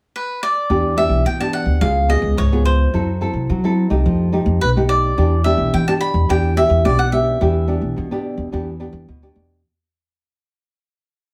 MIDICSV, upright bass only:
0, 0, Header, 1, 2, 480
1, 0, Start_track
1, 0, Key_signature, 1, "minor"
1, 0, Tempo, 558659
1, 596, Time_signature, 4, 2, 24, 8
1, 9738, End_track
2, 0, Start_track
2, 0, Title_t, "Upright bass"
2, 0, Program_c, 0, 32
2, 600, Note_on_c, 0, 40, 89
2, 904, Note_off_c, 0, 40, 0
2, 939, Note_on_c, 0, 35, 71
2, 1048, Note_off_c, 0, 35, 0
2, 1074, Note_on_c, 0, 52, 72
2, 1381, Note_off_c, 0, 52, 0
2, 1423, Note_on_c, 0, 38, 80
2, 1531, Note_off_c, 0, 38, 0
2, 1555, Note_on_c, 0, 37, 91
2, 1861, Note_off_c, 0, 37, 0
2, 1906, Note_on_c, 0, 37, 85
2, 2013, Note_off_c, 0, 37, 0
2, 2039, Note_on_c, 0, 37, 89
2, 2446, Note_off_c, 0, 37, 0
2, 2523, Note_on_c, 0, 42, 84
2, 2827, Note_off_c, 0, 42, 0
2, 2866, Note_on_c, 0, 48, 68
2, 2973, Note_off_c, 0, 48, 0
2, 3003, Note_on_c, 0, 54, 83
2, 3307, Note_off_c, 0, 54, 0
2, 3352, Note_on_c, 0, 36, 74
2, 3457, Note_off_c, 0, 36, 0
2, 3485, Note_on_c, 0, 41, 87
2, 3789, Note_off_c, 0, 41, 0
2, 3830, Note_on_c, 0, 41, 87
2, 3936, Note_off_c, 0, 41, 0
2, 3971, Note_on_c, 0, 35, 87
2, 4375, Note_off_c, 0, 35, 0
2, 4448, Note_on_c, 0, 40, 87
2, 4751, Note_off_c, 0, 40, 0
2, 4791, Note_on_c, 0, 35, 74
2, 4897, Note_off_c, 0, 35, 0
2, 4927, Note_on_c, 0, 52, 80
2, 5231, Note_off_c, 0, 52, 0
2, 5274, Note_on_c, 0, 40, 84
2, 5379, Note_off_c, 0, 40, 0
2, 5407, Note_on_c, 0, 40, 90
2, 5711, Note_off_c, 0, 40, 0
2, 5754, Note_on_c, 0, 40, 85
2, 5859, Note_off_c, 0, 40, 0
2, 5888, Note_on_c, 0, 35, 91
2, 6293, Note_off_c, 0, 35, 0
2, 6367, Note_on_c, 0, 40, 93
2, 6671, Note_off_c, 0, 40, 0
2, 6715, Note_on_c, 0, 35, 70
2, 6820, Note_off_c, 0, 35, 0
2, 6852, Note_on_c, 0, 52, 80
2, 7154, Note_off_c, 0, 52, 0
2, 7196, Note_on_c, 0, 40, 79
2, 7300, Note_off_c, 0, 40, 0
2, 7332, Note_on_c, 0, 40, 84
2, 7633, Note_off_c, 0, 40, 0
2, 7669, Note_on_c, 0, 40, 86
2, 7776, Note_off_c, 0, 40, 0
2, 7805, Note_on_c, 0, 38, 78
2, 8019, Note_off_c, 0, 38, 0
2, 8039, Note_on_c, 0, 40, 80
2, 8255, Note_off_c, 0, 40, 0
2, 9738, End_track
0, 0, End_of_file